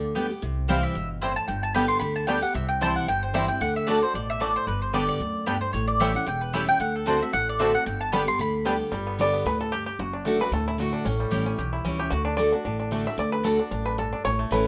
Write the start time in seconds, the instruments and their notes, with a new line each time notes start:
Already playing: upright bass D2, steel-string acoustic guitar D3
0.15 steel-string acoustic guitar D3 G3 B3 G4, mandolin B3 G4 D5 G5
0.30 steel-string acoustic guitar B3 G4
0.42 upright bass C2, steel-string acoustic guitar C3
0.68 steel-string acoustic guitar E3 G3 C4 E4, five-string banjo G3 C4 E4, mandolin C4 E4 C5 F5 G5
0.83 mandolin E5
0.95 upright bass G1, steel-string acoustic guitar B2
1.21 steel-string acoustic guitar A2, five-string banjo G3 C4 E4, mandolin C4 E4 C5 G5
1.36 mandolin A5
1.48 upright bass G1, steel-string acoustic guitar G2, mandolin G5
1.63 mandolin A5
1.74 steel-string acoustic guitar D3 G3 B3 G4, five-string banjo G3 B3 D4, mandolin B3 G4 D5 G5 B5
1.88 mandolin C6
2.00 upright bass D2, steel-string acoustic guitar D3, mandolin B5
2.16 mandolin A5
2.27 steel-string acoustic guitar D3 G3 B3 G4, five-string banjo G3 B3 D4, mandolin B3 G4 D5 G5
2.42 steel-string acoustic guitar B3 G4, mandolin F#5
2.54 upright bass C2, steel-string acoustic guitar C3, mandolin E5
2.69 mandolin G5
2.81 steel-string acoustic guitar E3 G3 C4 E4, five-string banjo G3 C4 E4, mandolin C4 E4 C5 G5 A5
2.96 mandolin F#5
3.08 upright bass G1, steel-string acoustic guitar G2, mandolin G5
3.23 mandolin C5
3.34 steel-string acoustic guitar E3 G3 C4 E4, five-string banjo G3 C4 E4, mandolin C4 E4 C5 E5 G5
3.48 steel-string acoustic guitar C4 E4, mandolin G5
3.61 upright bass D2, steel-string acoustic guitar D3, mandolin F#5
3.76 mandolin E5
3.87 steel-string acoustic guitar D3 A3 D4 F#4, mandolin A3 F#4 D5 A5, five-string banjo A3 D4
4.02 steel-string acoustic guitar D4 F#4, mandolin C5
4.14 upright bass A1, steel-string acoustic guitar B2, mandolin D5
4.30 mandolin E5
4.40 steel-string acoustic guitar A2, mandolin A3 F#4 D5 A5, five-string banjo A3 D4
4.56 mandolin C5
4.67 upright bass G1, steel-string acoustic guitar G2, mandolin B4
4.82 mandolin C5
4.93 steel-string acoustic guitar D3 G3 B3 G4, five-string banjo G3 B3 D4, mandolin B3 G4 D5 G5
5.09 mandolin D5
5.20 upright bass D2, steel-string acoustic guitar F#2
5.46 steel-string acoustic guitar G2, five-string banjo G3 B3 D4, mandolin B3 G4 D5 G5
5.61 mandolin C5
5.73 upright bass A1, steel-string acoustic guitar A2, mandolin C#5
5.88 mandolin D5
6.00 steel-string acoustic guitar E3 G3 C#4 E4, five-string banjo G3 C#4 E4, mandolin A3 E4 C#5 E5 G5
6.14 steel-string acoustic guitar C#4 E4, mandolin F#5
6.26 upright bass E1, steel-string acoustic guitar E2, mandolin G5
6.41 mandolin B4
6.53 steel-string acoustic guitar E3 G3 C#4 E4, five-string banjo G3 C#4 E4, mandolin A3 E4 C#5 E5 G5
6.67 steel-string acoustic guitar C#4 E4, mandolin G5
6.80 upright bass D2, steel-string acoustic guitar D3, mandolin F#5
6.96 mandolin A4
7.06 steel-string acoustic guitar D3 A3 C4 F#4, five-string banjo A3 C4 D4, mandolin C4 F#4 C5 D5 A5
7.20 steel-string acoustic guitar C4 F#4, mandolin E5
7.33 upright bass A1, steel-string acoustic guitar A2, mandolin F#5
7.49 mandolin D5
7.59 steel-string acoustic guitar D3 A3 C4 F#4, five-string banjo A3 C4 D4, mandolin C4 F#4 D5 E5 A5
7.75 steel-string acoustic guitar C4, mandolin F#5
7.86 upright bass G1, steel-string acoustic guitar G2, mandolin G5
8.01 mandolin A5
8.12 steel-string acoustic guitar D3 G3 B3 G4, five-string banjo G3 B3 D4, mandolin B3 G4 D5 G5 B5
8.27 steel-string acoustic guitar B3 G4, mandolin C6
8.39 upright bass D2, steel-string acoustic guitar D3, mandolin B5
8.65 steel-string acoustic guitar D3 G3 B3 G4, five-string banjo G3 B3 D4, mandolin B3 G4 D5 G5
8.91 upright bass G1, steel-string acoustic guitar G2, five-string banjo G3
9.07 five-string banjo B3
9.19 steel-string acoustic guitar D3 G3 B3 G4, five-string banjo D5
9.33 five-string banjo B3
9.45 upright bass D2, steel-string acoustic guitar A2, five-string banjo B4
9.61 five-string banjo A4
9.72 steel-string acoustic guitar G2, five-string banjo G4
9.86 five-string banjo G4
9.99 upright bass F#1, steel-string acoustic guitar F#2, five-string banjo F#4
10.13 five-string banjo D4
10.25 steel-string acoustic guitar D3 A3 D4 F#4, five-string banjo A3
10.40 steel-string acoustic guitar F#4, five-string banjo B4
10.51 upright bass D2, steel-string acoustic guitar A2, five-string banjo A4
10.68 five-string banjo E4
10.78 steel-string acoustic guitar D3 A3 D4 F#4, five-string banjo F#4
10.93 five-string banjo D4
11.05 upright bass A1, steel-string acoustic guitar A2, five-string banjo C#4
11.20 five-string banjo G3
11.31 upright bass A1, steel-string acoustic guitar E3 G3 C#4 E4, five-string banjo G4
11.46 five-string banjo C#4, steel-string acoustic guitar C#4 E4
11.58 upright bass B1, steel-string acoustic guitar E2, five-string banjo G4
11.73 five-string banjo E4
11.85 upright bass C#2, steel-string acoustic guitar E3 G3 C#4 E4, five-string banjo C#4
11.99 steel-string acoustic guitar C#4 E4, five-string banjo G4
12.10 upright bass D2, steel-string acoustic guitar D3, five-string banjo F#4
12.25 five-string banjo D4
12.37 steel-string acoustic guitar D3 A3 D4 F#4, five-string banjo D5
12.52 five-string banjo D4, steel-string acoustic guitar D4 F#4
12.65 upright bass A1, steel-string acoustic guitar A2, five-string banjo D4
12.80 five-string banjo D4
12.91 steel-string acoustic guitar D3 A3 D4 F#4, five-string banjo A3
13.05 steel-string acoustic guitar D4 F#4, five-string banjo E5
13.18 upright bass D2, steel-string acoustic guitar D3, five-string banjo D5
13.32 five-string banjo B4
13.43 steel-string acoustic guitar D3 A3 D4 F#4, five-string banjo A4
13.59 five-string banjo D4, steel-string acoustic guitar D4 F#4
13.71 upright bass A1, steel-string acoustic guitar F#2, five-string banjo D4
13.86 five-string banjo B4
13.98 steel-string acoustic guitar G2, five-string banjo A4
14.13 five-string banjo D4
14.25 upright bass A1, steel-string acoustic guitar A2, five-string banjo C#5
14.39 five-string banjo A3
14.51 upright bass A1, steel-string acoustic guitar E3 A3 C#4 E4, five-string banjo B4